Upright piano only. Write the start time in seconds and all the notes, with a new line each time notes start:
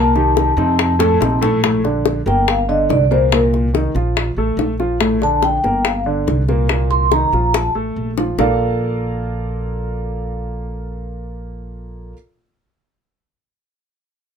Already playing: A#2 A#3 A#4
0.15 D#3 D#4 G4
0.57 C3 C4 D#4
0.99 A2 A3 A4
1.20 C3 C4 D#4
1.41 A2 A3 A4
1.63 A2 A3
1.84 D3 D4
2.26 A#3 A#4
2.69 D3 D4
3.11 A#2 A#3
3.32 A#2 A#3
3.74 D#3 D#4
3.95 F3 F4
4.38 A3 A4
4.80 F3 F4
5.00 A2 A3
5.22 D3 D4
5.64 A#3 A#4
6.06 D3 D4
6.48 A#2 A#3
6.70 A#2 A#3
7.11 D#3 D#4
7.33 F3 F4
7.75 A3 A4
8.18 F3 F4
8.38 A#3 F4 A4 A#4 D5 F5